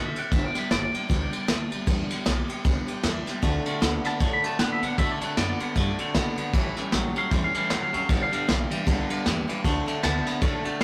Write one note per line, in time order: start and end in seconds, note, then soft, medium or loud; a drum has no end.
0.00 0.15 D3 medium
0.00 0.16 A3 medium
0.00 0.16 C4 medium
0.00 0.14 F#4 medium
0.06 0.19 E5 medium
0.15 0.32 A3 medium
0.15 0.32 C4 soft
0.15 0.31 F#4 medium
0.15 0.32 F#5 medium
0.15 muted upright bass stroke medium
0.15 ride medium
0.31 0.47 G1 loud
0.31 0.55 G2 medium
0.31 0.55 D3 medium
0.31 0.55 F3 medium
0.31 0.55 G3 medium
0.31 0.54 B3 medium
0.31 0.53 G4 medium
0.31 0.45 E5 loud
0.31 kick loud
0.31 ride medium
0.45 0.58 D5 loud
0.54 0.68 F3 soft
0.54 0.70 G3 soft
0.54 0.71 B3 medium
0.54 0.70 G4 medium
0.54 muted upright bass stroke medium
0.54 snare soft
0.54 ride medium
0.58 0.70 B4 medium
0.69 0.85 G1 medium
0.69 0.93 F3 medium
0.69 0.94 G3 medium
0.69 0.93 B3 medium
0.69 0.91 G4 medium
0.69 0.82 D5 loud
0.69 snare loud
0.69 ride medium
0.83 1.97 D5 loud
0.92 1.08 F3 soft
0.92 1.09 G3 soft
0.92 1.09 B3 soft
0.92 1.09 G4 soft
0.92 muted upright bass stroke medium
0.92 ride medium
1.09 1.25 D2 medium
1.09 1.32 G2 medium
1.09 1.32 D3 medium
1.09 1.33 F3 medium
1.09 1.33 G3 medium
1.09 1.32 B3 medium
1.09 1.30 G4 medium
1.09 kick loud
1.09 snare soft
1.09 ride medium
1.31 1.46 F3 soft
1.31 1.47 G3 medium
1.31 1.49 B3 medium
1.31 1.48 G4 medium
1.31 ride medium
1.48 1.64 D2 medium
1.48 1.72 G3 medium
1.48 1.71 B3 medium
1.48 1.69 G4 medium
1.48 snare loud
1.48 ride medium
1.71 1.82 D2 medium
1.71 1.86 F3 medium
1.71 1.87 G3 medium
1.71 1.87 B3 medium
1.71 1.87 G4 medium
1.71 ride medium
1.87 2.02 E2 loud
1.87 2.10 G2 medium
1.87 2.10 D3 medium
1.87 2.10 F3 medium
1.87 2.10 G3 medium
1.87 2.09 B3 loud
1.87 2.08 G4 medium
1.87 kick loud
1.87 ride medium
2.09 2.24 F3 medium
2.09 2.25 G3 soft
2.09 2.26 B3 medium
2.09 2.26 G4 medium
2.09 muted upright bass stroke medium
2.09 snare soft
2.09 ride medium
2.25 2.41 B1 medium
2.25 2.49 F3 medium
2.25 2.48 B3 medium
2.25 2.47 G4 medium
2.25 snare loud
2.25 ride medium
2.48 2.64 F3 soft
2.48 2.64 G3 soft
2.48 2.65 B3 medium
2.48 2.65 G4 medium
2.48 muted upright bass stroke medium
2.48 ride medium
2.64 2.80 C2 loud
2.64 2.88 G2 medium
2.64 2.88 D3 loud
2.64 2.88 F3 medium
2.64 2.88 G3 loud
2.64 2.87 B3 loud
2.64 2.85 G4 medium
2.64 kick loud
2.64 ride medium
2.87 3.02 F3 medium
2.87 3.03 G3 medium
2.87 3.04 B3 medium
2.87 3.03 G4 medium
2.87 muted upright bass stroke medium
2.87 ride medium
3.03 3.19 E2 loud
3.03 3.27 F3 medium
3.03 3.27 G3 medium
3.03 3.26 B3 medium
3.03 3.25 G4 medium
3.03 snare loud
3.03 ride medium
3.26 3.42 F3 medium
3.26 3.43 G3 medium
3.26 3.43 B3 medium
3.26 3.43 G4 medium
3.26 snare soft
3.26 ride medium
3.42 3.58 D2 loud
3.42 3.66 D3 loud
3.42 3.64 D3 medium
3.42 3.66 A3 medium
3.42 3.64 A3 loud
3.42 3.66 C4 loud
3.42 3.64 F#4 loud
3.42 kick loud
3.42 ride medium
3.65 3.80 D3 medium
3.65 3.80 A3 medium
3.65 3.82 C4 medium
3.65 3.81 F#4 medium
3.65 ride medium
3.81 3.96 D2 medium
3.81 4.04 D3 medium
3.81 4.02 D3 medium
3.81 4.05 A3 medium
3.81 4.03 B3 medium
3.81 4.05 C4 medium
3.81 4.03 F#4 medium
3.81 snare loud
3.81 ride medium
4.04 4.19 D3 medium
4.04 4.20 A3 soft
4.04 4.19 B3 medium
4.04 4.20 C4 soft
4.04 4.20 F#4 medium
4.04 4.32 A5 loud
4.04 muted upright bass stroke medium
4.04 snare soft
4.04 ride medium
4.20 4.35 A2 medium
4.20 4.43 D3 medium
4.20 4.41 D3 medium
4.20 4.44 A3 medium
4.20 4.42 A3 medium
4.20 4.44 C4 medium
4.20 4.42 F#4 medium
4.20 kick loud
4.20 ride medium
4.33 4.46 B5 loud
4.43 4.58 D3 medium
4.43 4.58 A3 medium
4.43 4.59 A3 medium
4.43 4.60 C4 medium
4.43 4.59 F#4 medium
4.43 4.59 A5 medium
4.43 muted upright bass stroke medium
4.43 ride medium
4.59 4.74 A2 medium
4.59 4.80 D3 medium
4.59 4.82 D3 medium
4.59 4.83 A3 medium
4.59 4.80 B3 loud
4.59 4.83 C4 medium
4.59 4.81 F#4 medium
4.59 4.72 F#5 loud
4.59 snare loud
4.59 ride medium
4.72 4.85 E5 medium
4.82 4.92 A2 medium
4.82 4.97 D3 medium
4.82 4.98 A3 soft
4.82 4.97 B3 medium
4.82 4.99 C4 medium
4.82 4.98 F#4 medium
4.82 4.98 F#5 medium
4.82 ride medium
4.98 5.13 B2 loud
4.98 5.19 D3 medium
4.98 5.21 D3 medium
4.98 5.19 A3 loud
4.98 5.22 A3 medium
4.98 5.21 C4 medium
4.98 5.19 F#4 medium
4.98 5.11 E5 loud
4.98 kick loud
4.98 ride medium
5.12 5.24 D5 medium
5.21 5.36 D3 medium
5.21 5.36 A3 medium
5.21 5.37 A3 soft
5.21 5.38 C4 medium
5.21 5.37 F#4 medium
5.21 5.37 B4 medium
5.21 muted upright bass stroke medium
5.21 snare soft
5.21 ride medium
5.37 5.52 F#2 medium
5.37 5.60 D3 medium
5.37 5.58 D3 medium
5.37 5.61 A3 medium
5.37 5.58 B3 medium
5.37 5.60 C4 medium
5.37 5.49 D5 loud
5.37 snare loud
5.37 ride medium
5.50 6.63 D5 loud
5.59 5.75 D3 medium
5.59 5.75 A3 soft
5.59 5.75 B3 medium
5.59 5.76 C4 soft
5.59 5.76 F#4 medium
5.59 muted upright bass stroke medium
5.59 ride medium
5.75 5.91 G2 medium
5.75 5.99 D3 medium
5.75 5.97 D3 medium
5.75 5.99 A3 medium
5.75 5.97 A3 medium
5.75 5.99 C4 medium
5.75 5.97 F#4 medium
5.75 kick loud
5.75 snare soft
5.75 ride medium
5.98 6.14 D3 medium
5.98 6.14 A3 medium
5.98 6.14 A3 soft
5.98 6.15 C4 medium
5.98 6.15 F#4 medium
5.98 muted upright bass stroke medium
5.98 ride medium
6.14 6.30 B2 loud
6.14 6.37 D3 medium
6.14 6.36 D3 medium
6.14 6.38 A3 medium
6.14 6.36 B3 medium
6.14 6.37 C4 medium
6.14 6.35 F#4 medium
6.14 kick medium
6.14 snare loud
6.14 ride medium
6.37 6.52 D3 medium
6.37 6.54 A3 medium
6.37 6.52 B3 medium
6.37 6.54 C4 medium
6.37 6.53 F#4 medium
6.37 muted upright bass stroke medium
6.37 ride medium
6.53 6.68 A1 loud
6.53 6.76 A2 medium
6.53 6.75 A2 medium
6.53 6.77 E3 medium
6.53 6.75 E3 loud
6.53 6.77 G3 medium
6.53 6.77 C#4 loud
6.53 6.75 G4 loud
6.53 kick loud
6.53 ride medium
6.76 6.91 A2 medium
6.76 6.91 E3 medium
6.76 6.92 G3 soft
6.76 6.93 C#4 medium
6.76 6.92 G4 medium
6.76 muted upright bass stroke medium
6.76 snare soft
6.76 ride medium
6.92 7.07 A1 medium
6.92 7.14 A2 medium
6.92 7.15 E3 medium
6.92 7.14 F#3 medium
6.92 7.16 G3 medium
6.92 7.15 C#4 medium
6.92 7.13 G4 medium
6.92 snare loud
6.92 ride medium
7.15 7.30 A2 medium
7.15 7.30 F#3 medium
7.15 7.31 G3 soft
7.15 7.31 C#4 soft
7.15 7.31 G4 soft
7.15 7.31 F5 loud
7.15 muted upright bass stroke medium
7.15 ride medium
7.31 7.46 E2 loud
7.31 7.54 A2 medium
7.31 7.52 A2 medium
7.31 7.54 E3 medium
7.31 7.53 E3 medium
7.31 7.55 G3 medium
7.31 7.54 C#4 medium
7.31 7.52 G4 medium
7.31 7.44 C5 medium
7.31 kick loud
7.31 snare soft
7.31 ride medium
7.44 7.56 F5 loud
7.53 7.69 A2 medium
7.53 7.69 E3 medium
7.53 7.69 G3 soft
7.53 7.70 C#4 medium
7.53 7.69 G4 medium
7.53 muted upright bass stroke medium
7.53 ride medium
7.58 7.70 F5 loud
7.69 7.85 E2 medium
7.69 7.91 A2 medium
7.69 7.93 E3 medium
7.69 7.91 F#3 medium
7.69 7.93 G3 medium
7.69 7.93 C#4 medium
7.69 7.91 G4 medium
7.69 7.83 C5 medium
7.69 snare loud
7.69 ride medium
7.83 7.96 F5 medium
7.92 8.04 E2 medium
7.92 8.07 A2 medium
7.92 8.08 F#3 medium
7.92 8.09 G3 soft
7.92 8.09 C#4 soft
7.92 8.09 G4 medium
7.92 ride medium
7.97 8.10 F5 medium
8.08 8.24 G1 loud
8.08 8.32 G2 medium
8.08 8.30 G2 medium
8.08 8.32 D3 medium
8.08 8.30 D3 medium
8.08 8.32 F3 medium
8.08 8.32 G3 medium
8.08 8.31 B3 medium
8.08 8.30 G4 medium
8.08 8.22 D5 loud
8.08 kick loud
8.08 ride medium
8.23 8.34 F5 loud
8.31 8.46 G2 medium
8.31 8.46 D3 medium
8.31 8.46 F3 soft
8.31 8.47 G3 medium
8.31 8.48 B3 medium
8.31 8.47 G4 medium
8.31 muted upright bass stroke medium
8.31 ride medium
8.35 9.48 F5 loud
8.47 8.63 B1 medium
8.47 8.68 G2 medium
8.47 8.69 E3 medium
8.47 8.70 F3 medium
8.47 8.71 G3 medium
8.47 8.69 G4 medium
8.47 snare loud
8.47 ride medium
8.70 8.85 G2 medium
8.70 8.85 E3 medium
8.70 8.86 F3 soft
8.70 8.86 G3 soft
8.70 8.87 B3 soft
8.70 8.86 G4 medium
8.70 muted upright bass stroke medium
8.70 ride medium
8.86 9.02 C2 loud
8.86 9.09 G2 medium
8.86 9.07 G2 medium
8.86 9.09 D3 loud
8.86 9.08 D3 loud
8.86 9.10 F3 medium
8.86 9.10 G3 loud
8.86 9.09 B3 medium
8.86 9.07 G4 loud
8.86 kick loud
8.86 snare soft
8.86 ride medium
9.09 9.24 G2 medium
9.09 9.24 D3 medium
9.09 9.24 F3 medium
9.09 9.25 G3 medium
9.09 9.26 B3 medium
9.09 9.25 G4 medium
9.09 muted upright bass stroke medium
9.09 ride medium
9.25 9.41 E2 medium
9.25 9.46 G2 medium
9.25 9.46 E3 medium
9.25 9.48 F3 medium
9.25 9.49 G3 medium
9.25 9.48 B3 medium
9.25 9.46 G4 medium
9.25 snare loud
9.25 ride medium
9.48 9.63 G2 medium
9.48 9.63 E3 medium
9.48 9.64 F3 medium
9.48 9.65 G3 medium
9.48 9.64 B3 medium
9.48 9.64 G4 medium
9.48 muted upright bass stroke medium
9.48 snare soft
9.48 ride medium
9.64 9.79 D2 loud
9.64 9.87 D3 medium
9.64 9.85 D3 medium
9.64 9.85 A3 loud
9.64 9.88 A3 loud
9.64 9.87 C4 medium
9.64 9.85 F#4 medium
9.64 kick loud
9.64 ride medium
9.86 10.01 D3 medium
9.86 10.02 A3 medium
9.86 10.03 C4 medium
9.86 10.03 F#4 medium
9.86 ride medium
10.02 10.19 D2 medium
10.02 10.26 D3 medium
10.02 10.23 D3 medium
10.02 10.26 A3 medium
10.02 10.24 B3 loud
10.02 10.25 C4 medium
10.02 10.24 F#4 medium
10.02 10.79 A5 loud
10.02 snare loud
10.02 ride medium
10.25 10.40 D3 medium
10.25 10.41 A3 soft
10.25 10.41 B3 medium
10.25 10.41 C4 soft
10.25 10.41 F#4 soft
10.25 snare soft
10.25 ride medium
10.41 10.57 A2 loud
10.41 10.65 D3 medium
10.41 10.63 D3 medium
10.41 10.65 A3 medium
10.41 10.63 A3 medium
10.41 10.65 C4 medium
10.41 10.63 F#4 medium
10.41 kick loud
10.41 ride medium
10.64 10.79 D3 medium
10.64 10.79 A3 medium
10.64 10.80 A3 soft
10.64 10.81 C4 medium
10.64 10.80 F#4 medium
10.64 muted upright bass stroke medium
10.64 ride medium
10.80 10.84 D3 medium
10.80 snare loud
10.80 ride medium